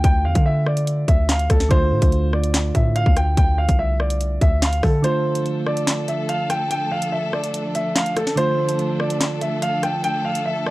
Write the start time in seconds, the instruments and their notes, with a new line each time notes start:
Already playing: synth keys D3 A3 F4
0.04 808-style bass D2, grand piano G5, kick, closed hi-hat
0.25 808-style bass E2, grand piano F5
0.35 808-style bass D3, kick, closed hi-hat
0.46 grand piano E5
0.66 grand piano D5, cross-stick
0.77 closed hi-hat
0.87 closed hi-hat
1.08 808-style bass D2, grand piano E5, kick, closed hi-hat
1.29 grand piano F5, snare, clap, closed hi-hat
1.39 closed hi-hat
1.50 808-style bass D2, grand piano A4, kick, cross-stick, closed hi-hat
1.60 snare
1.69 808-style bass D2, synth keys D3 A3 F4, grand piano C5, kick, closed hi-hat
1.91 808-style bass A2
2.02 808-style bass D2, kick, closed hi-hat
2.12 closed hi-hat
2.33 grand piano D5, cross-stick
2.44 closed hi-hat
2.54 snare, clap, closed hi-hat
2.75 808-style bass A2, grand piano E5, kick, closed hi-hat
2.96 grand piano F5, closed hi-hat
3.06 808-style bass D2, kick
3.17 grand piano G5, cross-stick, closed hi-hat
3.37 808-style bass D2, grand piano G5, kick, closed hi-hat
3.58 grand piano F5
3.69 808-style bass C2, kick, closed hi-hat
3.79 grand piano E5
4.00 grand piano D5, cross-stick
4.10 closed hi-hat
4.21 closed hi-hat
4.41 808-style bass D2, grand piano E5, kick, closed hi-hat
4.62 grand piano F5, snare, clap, closed hi-hat
4.73 closed hi-hat
4.83 808-style bass D3, grand piano A4, kick, cross-stick, open hi-hat
5.02 synth keys D3 A3 F4, string section F3 A3 D4 A4, grand piano C5, closed hi-hat
5.35 closed hi-hat
5.46 closed hi-hat
5.66 grand piano D5, cross-stick
5.77 closed hi-hat
5.87 snare, clap, closed hi-hat
6.08 grand piano E5, closed hi-hat
6.29 grand piano F5, closed hi-hat
6.50 grand piano G5, cross-stick, closed hi-hat
6.71 grand piano G5, closed hi-hat
6.91 grand piano F5
7.02 closed hi-hat
7.12 grand piano E5
7.33 grand piano D5, cross-stick
7.44 closed hi-hat
7.54 closed hi-hat
7.75 grand piano E5, closed hi-hat
7.96 grand piano F5, snare, clap, closed hi-hat
8.06 closed hi-hat
8.16 grand piano A4, cross-stick, closed hi-hat
8.27 snare
8.36 synth keys D3 A3 F4, string section A4, grand piano C5, closed hi-hat
8.69 closed hi-hat
8.79 closed hi-hat
9.00 grand piano D5, cross-stick
9.10 closed hi-hat
9.21 snare, clap, closed hi-hat
9.41 grand piano E5, closed hi-hat
9.62 grand piano F5, closed hi-hat
9.83 grand piano G5, cross-stick, closed hi-hat
10.04 grand piano G5, closed hi-hat
10.25 grand piano F5
10.35 closed hi-hat
10.45 grand piano E5
10.66 grand piano D5, cross-stick